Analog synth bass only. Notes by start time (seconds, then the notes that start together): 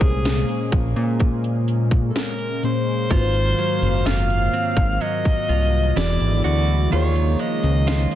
0.01 C2
0.73 A#1
0.96 A#2
3.11 G#1
3.82 F#1
4.06 F#1
4.77 G#1
5.50 C2
5.97 E1
6.21 G#1
6.45 D2
6.93 D#2
7.64 C#2